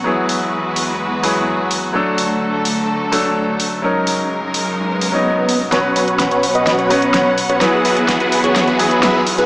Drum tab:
HH |--o---o---o---o-|--o---o---o---o-|--o---o---o---o-|x-oxxxoxxxoxx-ox|
SD |----------------|----------------|----------------|o---o---o---o---|

HH |x-oxxxoxxxoxx-ox|
SD |o---o---o---o---|